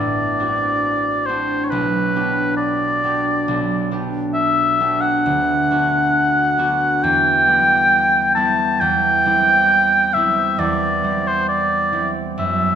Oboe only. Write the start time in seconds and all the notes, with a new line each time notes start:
Already playing: D5
1.26 C5
1.65 C#5
1.70 B4
2.57 D5
4.34 E5
5.01 F#5
7.03 G5
8.35 A5
8.80 G5
10.14 E5
10.59 D5
11.28 C5
11.48 D5
12.39 E5